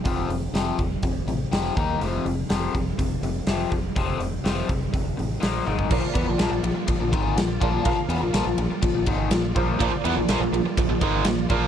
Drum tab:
CC |----------------|----------------|----------------|x---------------|
RD |----------------|----------------|----------------|--x-x-x-x-x-x-x-|
HH |o-o-o-o-o-o-o-o-|o-o-o-o-o-o-o-o-|o-o-o-o-o-o-o---|----------------|
SD |----o-------o---|----o-------o---|----o-------o---|----o-------o---|
T1 |----------------|----------------|--------------o-|----------------|
BD |o-----o-o-----o-|------o-o-----o-|o-----o-o------o|o-o-----o-o---o-|

CC |----------------|----------------|
RD |x-x-x-x-x-x-x-x-|x-x-x-x-x-x-x-x-|
HH |----------------|----------------|
SD |----o-------o---|----o-------o---|
T1 |----------------|----------------|
BD |o-------o-o---o-|o-------o-o---o-|